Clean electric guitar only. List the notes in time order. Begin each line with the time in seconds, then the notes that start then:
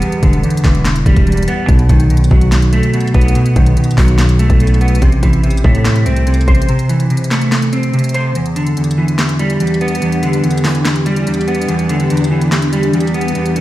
Already playing: G3 B3
0.02 E2
0.23 D3
0.44 E2
0.65 E3
1.06 G3
1.27 E2
1.48 B3
1.69 B2
1.89 D#3
2.10 B2
2.31 F#3
2.73 A3
2.94 B2
3.14 B3
3.35 B2
3.56 D#3
3.77 B2
3.98 F#3
4.39 A3
4.60 B2
4.81 B3
5.02 C3
5.23 E3
5.43 C3
5.64 A3
6.06 C4
6.27 C3
6.48 C5
6.69 C3
6.89 E3
7.10 C3
7.31 A3
7.73 C4
7.94 C3
8.14 C5
8.35 E2
8.56 D3
8.77 E2
8.98 E3
9.39 G3
9.60 E2
9.81 B3
10.02 E2
10.23 D3
10.44 E2
10.64 E3
11.06 G3
11.27 E2
11.48 B3
11.69 E2
11.89 D3
12.10 E2
12.31 E3
12.73 G3
12.94 E2
13.14 B3
13.35 E2
13.56 D3